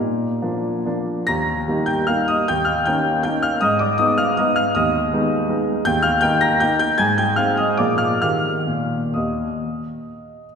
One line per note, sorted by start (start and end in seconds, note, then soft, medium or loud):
0.00 0.41 A#2 medium
0.00 1.02 A#4 medium
0.00 1.06 A#5 medium
0.42 0.81 F3 soft
0.42 0.81 A#3 soft
0.42 0.81 D4 soft
0.86 1.23 F3 soft
0.86 1.23 A#3 soft
0.86 1.24 D4 soft
1.27 1.67 D#2 medium
1.27 1.84 A#5 medium
1.27 1.87 A#6 loud
1.68 2.04 G3 soft
1.68 2.04 A#3 soft
1.68 2.05 D#4 soft
1.86 2.06 G5 medium
1.86 2.07 G6 medium
2.07 2.43 G3 soft
2.07 2.43 A#3 soft
2.07 2.43 D#4 soft
2.07 2.26 F5 medium
2.07 2.27 F6 medium
2.28 2.46 D#5 medium
2.28 2.47 D#6 medium
2.48 2.85 D#2 medium
2.48 2.65 G5 medium
2.48 2.66 G6 loud
2.65 2.83 F5 medium
2.65 2.84 F6 medium
2.86 3.21 A#3 soft
2.86 3.21 C#4 soft
2.86 3.21 D#4 soft
2.86 3.21 G5 medium
2.86 3.22 G6 medium
3.23 3.58 A#3 soft
3.23 3.58 C#4 soft
3.23 3.58 D#4 soft
3.23 3.41 G5 medium
3.23 3.42 G6 medium
3.43 3.60 F5 medium
3.43 3.61 F6 medium
3.61 3.98 G#2 medium
3.61 3.79 D#5 medium
3.61 3.79 D#6 medium
3.79 3.97 D5 medium
3.79 3.98 D6 medium
3.98 4.32 G#3 soft
3.98 4.33 B3 soft
3.98 4.33 D#4 soft
3.98 4.16 D#5 medium
3.98 4.17 D#6 medium
4.18 4.35 F5 medium
4.18 4.36 F6 medium
4.37 4.71 G#3 soft
4.37 4.71 B3 soft
4.37 4.72 D#4 soft
4.37 4.55 D#5 medium
4.37 4.55 D#6 medium
4.56 4.73 F5 medium
4.56 4.74 F6 medium
4.75 5.10 D#2 medium
4.75 5.82 D#5 medium
4.75 5.85 D#6 medium
5.13 5.46 G#3 soft
5.13 5.46 B3 soft
5.13 5.46 D#4 medium
5.48 5.81 G#3 soft
5.48 5.82 B3 soft
5.48 5.82 D#4 soft
5.85 6.23 D#2 medium
5.85 6.03 G5 medium
5.85 6.04 G6 loud
6.03 6.21 F5 medium
6.03 6.22 F6 loud
6.21 6.57 A#3 soft
6.21 6.58 D#4 medium
6.21 6.41 G5 medium
6.21 6.41 G6 loud
6.41 6.60 A#5 medium
6.41 6.61 A#6 loud
6.60 6.97 A#3 soft
6.60 6.97 D#4 medium
6.60 6.79 G5 medium
6.60 6.78 G6 medium
6.79 6.99 G5 medium
6.79 7.00 G6 loud
6.98 7.37 G#2 medium
6.98 7.17 G#5 medium
6.98 7.18 G#6 loud
7.18 7.37 G5 medium
7.18 7.38 G6 medium
7.36 7.75 G#3 soft
7.36 7.76 C4 soft
7.36 7.75 D#4 soft
7.36 7.57 F5 medium
7.36 7.58 F6 medium
7.57 7.78 D#5 medium
7.57 7.79 D#6 medium
7.77 8.21 A#2 medium
7.77 8.18 F3 soft
7.77 8.18 A#3 soft
7.77 8.18 G#4 soft
7.77 7.99 D5 medium
7.77 8.00 D6 medium
7.98 8.19 F5 medium
7.98 8.20 F6 medium
8.22 8.54 D#3 medium
8.22 8.58 A#3 soft
8.22 8.58 G4 soft
8.22 9.11 F5 medium
8.22 9.15 F6 medium
8.67 9.00 A#2 soft
9.14 9.46 D#2 soft
9.14 10.40 D#5 soft
9.14 10.43 D#6 medium